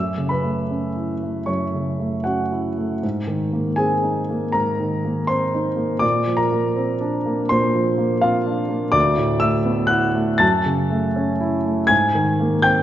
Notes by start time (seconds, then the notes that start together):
Already playing: F#2 E5 E6
0.18 C#3
0.29 B4 B5
0.43 A3
0.71 C#4
0.96 E4
1.23 A3
1.46 F#2 C#5 C#6
1.74 C#3
2.00 A3
2.24 C#4 F#4 F#5
2.52 E4
2.78 A3
3.03 G#2
3.27 D#3
3.53 A#3
3.76 C4 G#4 G#5
4.03 D#4
4.30 A#3
4.52 G#2 A#4 A#5
4.80 D#3
5.05 A#3
5.27 C4 C5 C6
5.54 D#4
5.76 A#3
5.99 A#2 D5 D6
6.27 F3
6.37 A#4 A#5
6.51 A#3
6.76 C4
7.01 D4
7.25 A#3
7.49 A#2 C5 C6
7.74 F3
7.98 A#3
8.21 C4 F4 F5
8.46 D4
8.68 A#3
8.92 D2 D5 D6
9.18 A2
9.40 A3 E5 E6
9.65 B3
9.87 E4 F#5 F#6
10.15 A3
10.38 F#2 A5 A6
10.66 C#3
10.90 A3
11.16 C#4
11.41 E4
11.65 A3
11.87 G#2 G#5 G#6
12.15 D#3
12.40 A#3
12.62 C4 G5 G6